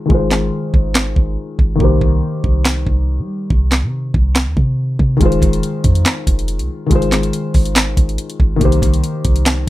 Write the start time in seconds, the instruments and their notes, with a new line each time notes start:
Already playing: felt piano D#3 G#3 F4 C5
0.06 felt piano D#3 G#3
0.10 808-style bass G#1, felt piano F4, kick
0.14 felt piano C5
0.31 snare, clap
0.74 808-style bass G#1, kick
0.95 snare, clap
1.16 808-style bass G#1, kick
1.59 808-style bass G#1, kick
1.75 felt piano D#3 A#3
1.80 808-style bass C2, felt piano G4 C5, kick
2.01 808-style bass C2, kick
2.44 808-style bass C2, kick
2.65 snare, clap
2.87 808-style bass C2, kick
3.19 808-style bass G3
3.50 808-style bass C2, kick
3.72 snare, clap
3.83 808-style bass C3
4.14 808-style bass C2, kick
4.36 snare, clap
4.47 808-style bass D#2
4.57 808-style bass C3, kick
4.99 808-style bass C3, kick
5.17 felt piano D#3 G#3
5.21 808-style bass F1, felt piano F4, kick, closed hi-hat
5.25 felt piano C5
5.32 closed hi-hat
5.42 808-style bass F1, kick, closed hi-hat
5.53 closed hi-hat
5.63 closed hi-hat
5.84 808-style bass F2, kick, closed hi-hat
5.95 closed hi-hat
6.06 snare, clap, closed hi-hat
6.27 808-style bass F1, kick, closed hi-hat
6.39 closed hi-hat
6.48 closed hi-hat
6.59 808-style bass C2, closed hi-hat
6.86 felt piano D#3 G#3
6.91 808-style bass G#1, felt piano F4, kick, closed hi-hat
6.95 felt piano C5
7.02 closed hi-hat
7.12 snare, clap, closed hi-hat
7.23 closed hi-hat
7.33 closed hi-hat
7.54 808-style bass G#1, kick, open hi-hat
7.65 closed hi-hat
7.76 snare, clap, closed hi-hat
7.97 808-style bass G#1, kick, closed hi-hat
8.09 closed hi-hat
8.18 closed hi-hat
8.30 closed hi-hat
8.40 808-style bass G#1, kick
8.56 felt piano D#3 A#3
8.61 808-style bass C2, felt piano G4 C5, kick, closed hi-hat
8.72 closed hi-hat
8.82 808-style bass C2, kick, closed hi-hat
8.94 closed hi-hat
9.04 closed hi-hat
9.25 808-style bass C2, kick, closed hi-hat
9.36 closed hi-hat
9.46 snare, clap, closed hi-hat